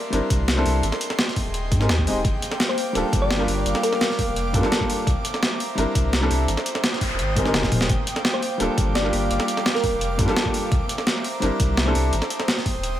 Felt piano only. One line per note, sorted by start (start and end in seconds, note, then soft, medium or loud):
0.10 0.54 G3 medium
0.10 0.54 C4 medium
0.10 0.55 D4 medium
0.10 0.56 E4 medium
0.15 0.56 A#4 medium
0.56 0.82 G3 loud
0.56 0.82 C4 medium
0.56 0.82 D4 loud
0.56 0.83 E4 medium
0.56 0.83 A4 loud
1.79 1.90 G#3 medium
1.79 1.91 C4 medium
1.79 1.91 D#4 medium
1.79 1.91 G4 medium
1.79 1.92 A#4 medium
2.06 2.17 G#3 medium
2.06 2.17 C4 medium
2.06 2.18 D#4 medium
2.06 2.18 G4 medium
2.06 2.18 D#5 loud
2.93 3.35 G3 medium
2.93 3.37 A#3 medium
2.93 3.37 D4 medium
2.93 3.38 F4 medium
2.97 3.39 A4 medium
3.37 4.51 G3 loud
3.37 4.51 A#3 loud
3.37 4.52 D4 medium
3.37 4.52 F4 medium
3.42 4.53 G4 loud
4.53 4.59 G3 medium
4.53 4.60 A#3 medium
4.53 4.61 D4 medium
4.53 4.61 F4 medium
4.53 4.62 A4 medium
4.61 5.05 G3 loud
4.61 5.05 A#3 medium
4.61 5.06 D4 medium
4.61 5.07 F4 medium
4.65 5.07 A4 loud
5.75 6.19 G3 medium
5.75 6.19 C4 medium
5.75 6.20 D4 medium
5.75 6.20 E4 medium
5.80 6.21 A#4 medium
6.21 6.47 G3 loud
6.21 6.47 C4 medium
6.21 6.47 D4 loud
6.21 6.47 E4 medium
6.21 6.48 A4 loud
7.35 7.41 G#3 medium
7.35 7.43 C4 medium
7.35 7.43 D#4 medium
7.35 7.44 G4 medium
7.35 7.44 A#4 medium
7.43 7.87 G#3 medium
7.43 7.88 C4 medium
7.43 7.88 D#4 medium
7.43 7.89 G4 medium
7.48 7.90 A#4 loud
8.58 9.00 G3 medium
8.58 9.02 A#3 medium
8.58 9.02 D4 medium
8.58 9.03 F4 medium
8.62 9.03 A4 medium
9.02 10.16 G3 loud
9.02 10.16 A#3 medium
9.02 10.17 D4 medium
9.02 10.17 F4 medium
9.07 10.18 G4 loud
10.18 10.24 G3 medium
10.18 10.25 A#3 medium
10.18 10.26 D4 medium
10.18 10.26 F4 medium
10.18 10.26 A4 medium
10.26 10.70 G3 loud
10.26 10.70 A#3 medium
10.26 10.71 D4 medium
10.26 10.71 F4 medium
10.30 10.72 A4 loud
11.40 11.83 G3 medium
11.40 11.84 C4 medium
11.40 11.84 D4 medium
11.40 11.85 E4 medium
11.45 11.86 A#4 medium
11.85 12.11 G3 loud
11.85 12.12 C4 medium
11.85 12.12 D4 loud
11.85 12.12 E4 medium
11.85 12.12 A4 loud